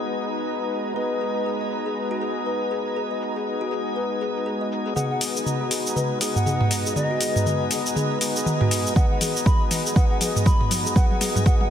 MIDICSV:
0, 0, Header, 1, 8, 480
1, 0, Start_track
1, 0, Key_signature, 5, "minor"
1, 0, Tempo, 500000
1, 924, Time_signature, 4, 2, 24, 8
1, 11232, End_track
2, 0, Start_track
2, 0, Title_t, "Bansuri"
2, 0, Program_c, 0, 73
2, 4759, Note_on_c, 0, 78, 84
2, 4852, Note_off_c, 0, 78, 0
2, 4902, Note_on_c, 0, 78, 73
2, 4967, Note_off_c, 0, 78, 0
2, 6102, Note_on_c, 0, 78, 91
2, 6584, Note_off_c, 0, 78, 0
2, 6680, Note_on_c, 0, 75, 92
2, 7162, Note_off_c, 0, 75, 0
2, 8602, Note_on_c, 0, 78, 80
2, 8694, Note_off_c, 0, 78, 0
2, 8743, Note_on_c, 0, 78, 68
2, 8807, Note_off_c, 0, 78, 0
2, 9082, Note_on_c, 0, 83, 83
2, 9226, Note_off_c, 0, 83, 0
2, 9560, Note_on_c, 0, 78, 81
2, 9653, Note_off_c, 0, 78, 0
2, 9703, Note_on_c, 0, 78, 69
2, 9767, Note_off_c, 0, 78, 0
2, 10043, Note_on_c, 0, 83, 83
2, 10187, Note_off_c, 0, 83, 0
2, 10522, Note_on_c, 0, 78, 90
2, 10614, Note_off_c, 0, 78, 0
2, 10663, Note_on_c, 0, 78, 75
2, 10727, Note_off_c, 0, 78, 0
2, 10998, Note_on_c, 0, 78, 92
2, 11092, Note_off_c, 0, 78, 0
2, 11142, Note_on_c, 0, 78, 75
2, 11207, Note_off_c, 0, 78, 0
2, 11232, End_track
3, 0, Start_track
3, 0, Title_t, "Kalimba"
3, 0, Program_c, 1, 108
3, 922, Note_on_c, 1, 71, 73
3, 1000, Note_off_c, 1, 71, 0
3, 1164, Note_on_c, 1, 68, 68
3, 1292, Note_off_c, 1, 68, 0
3, 1404, Note_on_c, 1, 68, 75
3, 1481, Note_off_c, 1, 68, 0
3, 1546, Note_on_c, 1, 75, 69
3, 1598, Note_off_c, 1, 75, 0
3, 1785, Note_on_c, 1, 68, 68
3, 1874, Note_off_c, 1, 68, 0
3, 2025, Note_on_c, 1, 66, 94
3, 2114, Note_off_c, 1, 66, 0
3, 2127, Note_on_c, 1, 68, 69
3, 2253, Note_off_c, 1, 68, 0
3, 2364, Note_on_c, 1, 71, 74
3, 2440, Note_off_c, 1, 71, 0
3, 2604, Note_on_c, 1, 68, 69
3, 2732, Note_off_c, 1, 68, 0
3, 2845, Note_on_c, 1, 68, 74
3, 2921, Note_off_c, 1, 68, 0
3, 2987, Note_on_c, 1, 75, 72
3, 3039, Note_off_c, 1, 75, 0
3, 3227, Note_on_c, 1, 68, 67
3, 3315, Note_off_c, 1, 68, 0
3, 3467, Note_on_c, 1, 66, 91
3, 3554, Note_off_c, 1, 66, 0
3, 3564, Note_on_c, 1, 68, 69
3, 3691, Note_off_c, 1, 68, 0
3, 3803, Note_on_c, 1, 71, 75
3, 3880, Note_off_c, 1, 71, 0
3, 4044, Note_on_c, 1, 68, 68
3, 4172, Note_off_c, 1, 68, 0
3, 4283, Note_on_c, 1, 68, 75
3, 4360, Note_off_c, 1, 68, 0
3, 4428, Note_on_c, 1, 75, 71
3, 4479, Note_off_c, 1, 75, 0
3, 4665, Note_on_c, 1, 68, 69
3, 4753, Note_off_c, 1, 68, 0
3, 4764, Note_on_c, 1, 68, 78
3, 4841, Note_off_c, 1, 68, 0
3, 4906, Note_on_c, 1, 75, 71
3, 4958, Note_off_c, 1, 75, 0
3, 5146, Note_on_c, 1, 68, 70
3, 5234, Note_off_c, 1, 68, 0
3, 5384, Note_on_c, 1, 66, 94
3, 5473, Note_off_c, 1, 66, 0
3, 5481, Note_on_c, 1, 68, 70
3, 5610, Note_off_c, 1, 68, 0
3, 5720, Note_on_c, 1, 71, 78
3, 5799, Note_off_c, 1, 71, 0
3, 5962, Note_on_c, 1, 68, 71
3, 6091, Note_off_c, 1, 68, 0
3, 6203, Note_on_c, 1, 68, 76
3, 6280, Note_off_c, 1, 68, 0
3, 6343, Note_on_c, 1, 75, 73
3, 6397, Note_off_c, 1, 75, 0
3, 6583, Note_on_c, 1, 68, 72
3, 6672, Note_off_c, 1, 68, 0
3, 6824, Note_on_c, 1, 66, 94
3, 6913, Note_off_c, 1, 66, 0
3, 6924, Note_on_c, 1, 68, 71
3, 7052, Note_off_c, 1, 68, 0
3, 7165, Note_on_c, 1, 71, 80
3, 7241, Note_off_c, 1, 71, 0
3, 7406, Note_on_c, 1, 68, 73
3, 7533, Note_off_c, 1, 68, 0
3, 7645, Note_on_c, 1, 68, 78
3, 7721, Note_off_c, 1, 68, 0
3, 7790, Note_on_c, 1, 75, 74
3, 7841, Note_off_c, 1, 75, 0
3, 8031, Note_on_c, 1, 68, 74
3, 8116, Note_off_c, 1, 68, 0
3, 8268, Note_on_c, 1, 66, 100
3, 8355, Note_off_c, 1, 66, 0
3, 8364, Note_on_c, 1, 68, 75
3, 8492, Note_off_c, 1, 68, 0
3, 8603, Note_on_c, 1, 71, 73
3, 8680, Note_off_c, 1, 71, 0
3, 8842, Note_on_c, 1, 68, 70
3, 8971, Note_off_c, 1, 68, 0
3, 9083, Note_on_c, 1, 68, 75
3, 9160, Note_off_c, 1, 68, 0
3, 9224, Note_on_c, 1, 75, 68
3, 9278, Note_off_c, 1, 75, 0
3, 9463, Note_on_c, 1, 68, 70
3, 9547, Note_off_c, 1, 68, 0
3, 9562, Note_on_c, 1, 71, 80
3, 9639, Note_off_c, 1, 71, 0
3, 9803, Note_on_c, 1, 68, 71
3, 9931, Note_off_c, 1, 68, 0
3, 10043, Note_on_c, 1, 68, 76
3, 10120, Note_off_c, 1, 68, 0
3, 10185, Note_on_c, 1, 75, 72
3, 10238, Note_off_c, 1, 75, 0
3, 10426, Note_on_c, 1, 68, 71
3, 10508, Note_off_c, 1, 68, 0
3, 10523, Note_on_c, 1, 71, 81
3, 10600, Note_off_c, 1, 71, 0
3, 10764, Note_on_c, 1, 68, 77
3, 10892, Note_off_c, 1, 68, 0
3, 11003, Note_on_c, 1, 71, 84
3, 11080, Note_off_c, 1, 71, 0
3, 11232, End_track
4, 0, Start_track
4, 0, Title_t, "Analog synth pad"
4, 0, Program_c, 2, 89
4, 0, Note_on_c, 2, 56, 70
4, 0, Note_on_c, 2, 63, 66
4, 0, Note_on_c, 2, 71, 82
4, 0, Note_on_c, 2, 82, 67
4, 4724, Note_off_c, 2, 63, 0
4, 4724, Note_off_c, 2, 82, 0
4, 4725, Note_off_c, 2, 56, 0
4, 4725, Note_off_c, 2, 71, 0
4, 4758, Note_on_c, 2, 56, 75
4, 4759, Note_on_c, 2, 63, 69
4, 4759, Note_on_c, 2, 71, 81
4, 4761, Note_on_c, 2, 82, 68
4, 11232, Note_off_c, 2, 56, 0
4, 11232, Note_off_c, 2, 63, 0
4, 11232, Note_off_c, 2, 71, 0
4, 11232, Note_off_c, 2, 82, 0
4, 11232, End_track
5, 0, Start_track
5, 0, Title_t, "Tonewheel organ"
5, 0, Program_c, 3, 16
5, 0, Note_on_c, 3, 59, 69
5, 0, Note_on_c, 3, 66, 63
5, 0, Note_on_c, 3, 68, 63
5, 0, Note_on_c, 3, 75, 74
5, 899, Note_off_c, 3, 59, 0
5, 899, Note_off_c, 3, 66, 0
5, 900, Note_off_c, 3, 68, 0
5, 900, Note_off_c, 3, 75, 0
5, 921, Note_on_c, 3, 59, 71
5, 921, Note_on_c, 3, 66, 66
5, 921, Note_on_c, 3, 68, 66
5, 921, Note_on_c, 3, 75, 77
5, 4739, Note_off_c, 3, 59, 0
5, 4739, Note_off_c, 3, 66, 0
5, 4739, Note_off_c, 3, 68, 0
5, 4739, Note_off_c, 3, 75, 0
5, 4761, Note_on_c, 3, 59, 84
5, 4761, Note_on_c, 3, 75, 93
5, 4762, Note_on_c, 3, 66, 79
5, 4762, Note_on_c, 3, 68, 80
5, 5939, Note_off_c, 3, 59, 0
5, 5939, Note_off_c, 3, 66, 0
5, 5939, Note_off_c, 3, 68, 0
5, 5939, Note_off_c, 3, 75, 0
5, 5962, Note_on_c, 3, 66, 87
5, 5962, Note_on_c, 3, 75, 103
5, 5963, Note_on_c, 3, 59, 91
5, 5963, Note_on_c, 3, 68, 83
5, 6659, Note_off_c, 3, 66, 0
5, 6659, Note_off_c, 3, 75, 0
5, 6660, Note_off_c, 3, 59, 0
5, 6660, Note_off_c, 3, 68, 0
5, 6682, Note_on_c, 3, 59, 87
5, 6683, Note_on_c, 3, 66, 80
5, 6683, Note_on_c, 3, 68, 82
5, 6683, Note_on_c, 3, 75, 100
5, 7859, Note_off_c, 3, 59, 0
5, 7860, Note_off_c, 3, 66, 0
5, 7860, Note_off_c, 3, 68, 0
5, 7860, Note_off_c, 3, 75, 0
5, 7884, Note_on_c, 3, 59, 95
5, 7884, Note_on_c, 3, 66, 89
5, 7884, Note_on_c, 3, 68, 87
5, 7884, Note_on_c, 3, 75, 108
5, 8580, Note_off_c, 3, 59, 0
5, 8580, Note_off_c, 3, 66, 0
5, 8580, Note_off_c, 3, 68, 0
5, 8580, Note_off_c, 3, 75, 0
5, 8605, Note_on_c, 3, 59, 83
5, 8605, Note_on_c, 3, 66, 76
5, 8605, Note_on_c, 3, 75, 94
5, 8606, Note_on_c, 3, 68, 78
5, 9549, Note_off_c, 3, 59, 0
5, 9549, Note_off_c, 3, 66, 0
5, 9549, Note_off_c, 3, 68, 0
5, 9549, Note_off_c, 3, 75, 0
5, 9564, Note_on_c, 3, 59, 85
5, 9564, Note_on_c, 3, 66, 80
5, 9564, Note_on_c, 3, 75, 97
5, 9565, Note_on_c, 3, 68, 79
5, 10508, Note_off_c, 3, 59, 0
5, 10508, Note_off_c, 3, 66, 0
5, 10508, Note_off_c, 3, 68, 0
5, 10508, Note_off_c, 3, 75, 0
5, 10523, Note_on_c, 3, 59, 95
5, 10523, Note_on_c, 3, 75, 102
5, 10524, Note_on_c, 3, 66, 85
5, 10525, Note_on_c, 3, 68, 83
5, 10988, Note_off_c, 3, 59, 0
5, 10988, Note_off_c, 3, 66, 0
5, 10988, Note_off_c, 3, 75, 0
5, 10989, Note_off_c, 3, 68, 0
5, 11002, Note_on_c, 3, 68, 86
5, 11003, Note_on_c, 3, 59, 96
5, 11003, Note_on_c, 3, 66, 85
5, 11003, Note_on_c, 3, 75, 103
5, 11232, Note_off_c, 3, 59, 0
5, 11232, Note_off_c, 3, 66, 0
5, 11232, Note_off_c, 3, 68, 0
5, 11232, Note_off_c, 3, 75, 0
5, 11232, End_track
6, 0, Start_track
6, 0, Title_t, "Analog synth bass"
6, 0, Program_c, 4, 38
6, 4758, Note_on_c, 4, 32, 92
6, 5958, Note_on_c, 4, 39, 89
6, 5973, Note_off_c, 4, 32, 0
6, 6650, Note_off_c, 4, 39, 0
6, 6681, Note_on_c, 4, 32, 96
6, 7740, Note_off_c, 4, 32, 0
6, 8601, Note_on_c, 4, 32, 99
6, 9801, Note_on_c, 4, 39, 92
6, 9815, Note_off_c, 4, 32, 0
6, 10492, Note_off_c, 4, 39, 0
6, 10519, Note_on_c, 4, 32, 99
6, 11232, Note_off_c, 4, 32, 0
6, 11232, End_track
7, 0, Start_track
7, 0, Title_t, "Downlifter"
7, 0, Program_c, 5, 103
7, 0, Note_on_c, 5, 60, 63
7, 924, Note_off_c, 5, 60, 0
7, 11232, End_track
8, 0, Start_track
8, 0, Title_t, "Drums"
8, 206, Note_on_c, 9, 69, 86
8, 302, Note_off_c, 9, 69, 0
8, 348, Note_on_c, 9, 69, 47
8, 444, Note_off_c, 9, 69, 0
8, 446, Note_on_c, 9, 69, 37
8, 542, Note_off_c, 9, 69, 0
8, 687, Note_on_c, 9, 69, 86
8, 783, Note_off_c, 9, 69, 0
8, 829, Note_on_c, 9, 69, 50
8, 925, Note_off_c, 9, 69, 0
8, 927, Note_on_c, 9, 69, 37
8, 1023, Note_off_c, 9, 69, 0
8, 1167, Note_on_c, 9, 69, 88
8, 1263, Note_off_c, 9, 69, 0
8, 1310, Note_on_c, 9, 69, 47
8, 1406, Note_off_c, 9, 69, 0
8, 1409, Note_on_c, 9, 69, 37
8, 1505, Note_off_c, 9, 69, 0
8, 1648, Note_on_c, 9, 69, 86
8, 1744, Note_off_c, 9, 69, 0
8, 1790, Note_on_c, 9, 69, 50
8, 1886, Note_off_c, 9, 69, 0
8, 1888, Note_on_c, 9, 69, 37
8, 1984, Note_off_c, 9, 69, 0
8, 2128, Note_on_c, 9, 69, 89
8, 2224, Note_off_c, 9, 69, 0
8, 2270, Note_on_c, 9, 69, 49
8, 2366, Note_off_c, 9, 69, 0
8, 2369, Note_on_c, 9, 69, 39
8, 2465, Note_off_c, 9, 69, 0
8, 2608, Note_on_c, 9, 69, 90
8, 2704, Note_off_c, 9, 69, 0
8, 2751, Note_on_c, 9, 69, 49
8, 2847, Note_off_c, 9, 69, 0
8, 2849, Note_on_c, 9, 69, 38
8, 2945, Note_off_c, 9, 69, 0
8, 3089, Note_on_c, 9, 69, 87
8, 3185, Note_off_c, 9, 69, 0
8, 3231, Note_on_c, 9, 69, 47
8, 3327, Note_off_c, 9, 69, 0
8, 3330, Note_on_c, 9, 69, 36
8, 3426, Note_off_c, 9, 69, 0
8, 3571, Note_on_c, 9, 69, 88
8, 3667, Note_off_c, 9, 69, 0
8, 3714, Note_on_c, 9, 69, 49
8, 3810, Note_off_c, 9, 69, 0
8, 3810, Note_on_c, 9, 69, 37
8, 3906, Note_off_c, 9, 69, 0
8, 4049, Note_on_c, 9, 69, 87
8, 4145, Note_off_c, 9, 69, 0
8, 4192, Note_on_c, 9, 69, 48
8, 4288, Note_off_c, 9, 69, 0
8, 4291, Note_on_c, 9, 69, 37
8, 4387, Note_off_c, 9, 69, 0
8, 4530, Note_on_c, 9, 69, 91
8, 4626, Note_off_c, 9, 69, 0
8, 4673, Note_on_c, 9, 69, 51
8, 4764, Note_on_c, 9, 47, 44
8, 4769, Note_off_c, 9, 69, 0
8, 4771, Note_on_c, 9, 69, 36
8, 4860, Note_off_c, 9, 47, 0
8, 4867, Note_off_c, 9, 69, 0
8, 5003, Note_on_c, 9, 46, 89
8, 5010, Note_on_c, 9, 69, 86
8, 5099, Note_off_c, 9, 46, 0
8, 5106, Note_off_c, 9, 69, 0
8, 5152, Note_on_c, 9, 69, 48
8, 5242, Note_on_c, 9, 47, 45
8, 5248, Note_off_c, 9, 69, 0
8, 5250, Note_on_c, 9, 69, 37
8, 5338, Note_off_c, 9, 47, 0
8, 5346, Note_off_c, 9, 69, 0
8, 5482, Note_on_c, 9, 46, 87
8, 5490, Note_on_c, 9, 69, 86
8, 5578, Note_off_c, 9, 46, 0
8, 5586, Note_off_c, 9, 69, 0
8, 5632, Note_on_c, 9, 69, 49
8, 5722, Note_on_c, 9, 47, 50
8, 5728, Note_off_c, 9, 69, 0
8, 5729, Note_on_c, 9, 69, 38
8, 5818, Note_off_c, 9, 47, 0
8, 5825, Note_off_c, 9, 69, 0
8, 5961, Note_on_c, 9, 46, 85
8, 5969, Note_on_c, 9, 69, 90
8, 6057, Note_off_c, 9, 46, 0
8, 6065, Note_off_c, 9, 69, 0
8, 6104, Note_on_c, 9, 45, 72
8, 6111, Note_on_c, 9, 69, 49
8, 6200, Note_off_c, 9, 45, 0
8, 6202, Note_on_c, 9, 47, 55
8, 6207, Note_off_c, 9, 69, 0
8, 6209, Note_on_c, 9, 69, 38
8, 6298, Note_off_c, 9, 47, 0
8, 6305, Note_off_c, 9, 69, 0
8, 6342, Note_on_c, 9, 45, 90
8, 6438, Note_off_c, 9, 45, 0
8, 6440, Note_on_c, 9, 46, 92
8, 6448, Note_on_c, 9, 69, 90
8, 6536, Note_off_c, 9, 46, 0
8, 6544, Note_off_c, 9, 69, 0
8, 6588, Note_on_c, 9, 69, 50
8, 6680, Note_on_c, 9, 47, 57
8, 6684, Note_off_c, 9, 69, 0
8, 6688, Note_on_c, 9, 69, 38
8, 6776, Note_off_c, 9, 47, 0
8, 6784, Note_off_c, 9, 69, 0
8, 6918, Note_on_c, 9, 46, 85
8, 6925, Note_on_c, 9, 69, 89
8, 7014, Note_off_c, 9, 46, 0
8, 7021, Note_off_c, 9, 69, 0
8, 7063, Note_on_c, 9, 45, 73
8, 7071, Note_on_c, 9, 69, 51
8, 7159, Note_off_c, 9, 45, 0
8, 7161, Note_on_c, 9, 47, 58
8, 7167, Note_off_c, 9, 69, 0
8, 7168, Note_on_c, 9, 69, 39
8, 7257, Note_off_c, 9, 47, 0
8, 7264, Note_off_c, 9, 69, 0
8, 7399, Note_on_c, 9, 46, 87
8, 7407, Note_on_c, 9, 69, 92
8, 7495, Note_off_c, 9, 46, 0
8, 7503, Note_off_c, 9, 69, 0
8, 7550, Note_on_c, 9, 69, 51
8, 7641, Note_on_c, 9, 47, 62
8, 7646, Note_off_c, 9, 69, 0
8, 7648, Note_on_c, 9, 69, 38
8, 7737, Note_off_c, 9, 47, 0
8, 7744, Note_off_c, 9, 69, 0
8, 7882, Note_on_c, 9, 46, 88
8, 7890, Note_on_c, 9, 69, 93
8, 7978, Note_off_c, 9, 46, 0
8, 7986, Note_off_c, 9, 69, 0
8, 8031, Note_on_c, 9, 69, 51
8, 8122, Note_on_c, 9, 47, 69
8, 8127, Note_off_c, 9, 69, 0
8, 8129, Note_on_c, 9, 69, 42
8, 8218, Note_off_c, 9, 47, 0
8, 8225, Note_off_c, 9, 69, 0
8, 8265, Note_on_c, 9, 45, 89
8, 8361, Note_off_c, 9, 45, 0
8, 8364, Note_on_c, 9, 46, 88
8, 8371, Note_on_c, 9, 69, 93
8, 8460, Note_off_c, 9, 46, 0
8, 8467, Note_off_c, 9, 69, 0
8, 8513, Note_on_c, 9, 69, 54
8, 8601, Note_on_c, 9, 47, 74
8, 8602, Note_on_c, 9, 36, 116
8, 8609, Note_off_c, 9, 69, 0
8, 8609, Note_on_c, 9, 69, 40
8, 8697, Note_off_c, 9, 47, 0
8, 8698, Note_off_c, 9, 36, 0
8, 8705, Note_off_c, 9, 69, 0
8, 8842, Note_on_c, 9, 46, 84
8, 8842, Note_on_c, 9, 47, 74
8, 8849, Note_on_c, 9, 69, 96
8, 8938, Note_off_c, 9, 46, 0
8, 8938, Note_off_c, 9, 47, 0
8, 8945, Note_off_c, 9, 69, 0
8, 8992, Note_on_c, 9, 69, 53
8, 9082, Note_on_c, 9, 36, 123
8, 9084, Note_on_c, 9, 47, 77
8, 9088, Note_off_c, 9, 69, 0
8, 9092, Note_on_c, 9, 69, 39
8, 9178, Note_off_c, 9, 36, 0
8, 9180, Note_off_c, 9, 47, 0
8, 9188, Note_off_c, 9, 69, 0
8, 9321, Note_on_c, 9, 46, 85
8, 9321, Note_on_c, 9, 47, 76
8, 9328, Note_on_c, 9, 69, 95
8, 9417, Note_off_c, 9, 46, 0
8, 9417, Note_off_c, 9, 47, 0
8, 9424, Note_off_c, 9, 69, 0
8, 9471, Note_on_c, 9, 69, 54
8, 9561, Note_on_c, 9, 47, 79
8, 9562, Note_on_c, 9, 36, 121
8, 9567, Note_off_c, 9, 69, 0
8, 9569, Note_on_c, 9, 69, 40
8, 9657, Note_off_c, 9, 47, 0
8, 9658, Note_off_c, 9, 36, 0
8, 9665, Note_off_c, 9, 69, 0
8, 9800, Note_on_c, 9, 46, 88
8, 9800, Note_on_c, 9, 47, 83
8, 9808, Note_on_c, 9, 69, 99
8, 9896, Note_off_c, 9, 46, 0
8, 9896, Note_off_c, 9, 47, 0
8, 9904, Note_off_c, 9, 69, 0
8, 9945, Note_on_c, 9, 45, 72
8, 9952, Note_on_c, 9, 69, 54
8, 10041, Note_off_c, 9, 45, 0
8, 10042, Note_on_c, 9, 36, 119
8, 10042, Note_on_c, 9, 47, 86
8, 10048, Note_off_c, 9, 69, 0
8, 10050, Note_on_c, 9, 69, 42
8, 10138, Note_off_c, 9, 36, 0
8, 10138, Note_off_c, 9, 47, 0
8, 10146, Note_off_c, 9, 69, 0
8, 10182, Note_on_c, 9, 45, 87
8, 10278, Note_off_c, 9, 45, 0
8, 10282, Note_on_c, 9, 46, 89
8, 10282, Note_on_c, 9, 47, 91
8, 10289, Note_on_c, 9, 69, 99
8, 10378, Note_off_c, 9, 46, 0
8, 10378, Note_off_c, 9, 47, 0
8, 10385, Note_off_c, 9, 69, 0
8, 10430, Note_on_c, 9, 69, 54
8, 10521, Note_on_c, 9, 36, 121
8, 10521, Note_on_c, 9, 47, 90
8, 10526, Note_off_c, 9, 69, 0
8, 10528, Note_on_c, 9, 69, 41
8, 10617, Note_off_c, 9, 36, 0
8, 10617, Note_off_c, 9, 47, 0
8, 10624, Note_off_c, 9, 69, 0
8, 10663, Note_on_c, 9, 47, 80
8, 10759, Note_off_c, 9, 47, 0
8, 10761, Note_on_c, 9, 46, 86
8, 10761, Note_on_c, 9, 47, 95
8, 10769, Note_on_c, 9, 69, 93
8, 10857, Note_off_c, 9, 46, 0
8, 10857, Note_off_c, 9, 47, 0
8, 10865, Note_off_c, 9, 69, 0
8, 10903, Note_on_c, 9, 45, 79
8, 10903, Note_on_c, 9, 47, 81
8, 10911, Note_on_c, 9, 69, 53
8, 10999, Note_off_c, 9, 45, 0
8, 10999, Note_off_c, 9, 47, 0
8, 11001, Note_on_c, 9, 36, 122
8, 11002, Note_on_c, 9, 47, 94
8, 11007, Note_off_c, 9, 69, 0
8, 11010, Note_on_c, 9, 69, 41
8, 11097, Note_off_c, 9, 36, 0
8, 11098, Note_off_c, 9, 47, 0
8, 11106, Note_off_c, 9, 69, 0
8, 11143, Note_on_c, 9, 47, 84
8, 11232, Note_off_c, 9, 47, 0
8, 11232, End_track
0, 0, End_of_file